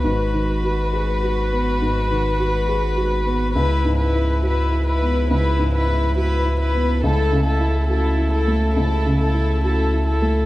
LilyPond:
<<
  \new Staff \with { instrumentName = "Violin section" } { \time 4/4 \key cis \minor \tempo 4 = 69 b'1 | b'8 b'8 b'8 b'8 b'8 b'8 b'8 b'8 | a'8 a'8 a'8 a'8 a'8 a'8 a'8 a'8 | }
  \new Staff \with { instrumentName = "String section" } { \time 4/4 \key cis \minor <gis fis' b'>1 | <gis e' b'>1 | <a e' a'>1 | }
  \new Staff \with { instrumentName = "Viola" } { \time 4/4 \key cis \minor fis'1 | e'8 e'8 e'8 e'8 e'8 e'8 e'8 e'8 | e'8 e'8 e'8 e'8 e'8 e'8 e'8 e'8 | }
  \new Staff \with { instrumentName = "Upright piano" } { \time 4/4 \key cis \minor \tuplet 3/2 { gis,8 dis8 fis'8 gis'8 fis'8 b8 gis,8 dis8 fis'8 gis'8 fis'8 b8 } | \tuplet 3/2 { cis,8 gis,8 e'8 fis'8 e'8 b8 cis,8 gis,8 e'8 fis'8 e'8 b8 } | \tuplet 3/2 { cis,8 cis8 e'8 fis'8 e'8 a8 cis,8 cis8 e'8 fis'8 e'8 a8 } | }
  \new Staff \with { instrumentName = "Sub bass" } { \clef bass \time 4/4 \key cis \minor gis,,1 | cis,1 | cis,1 | }
>>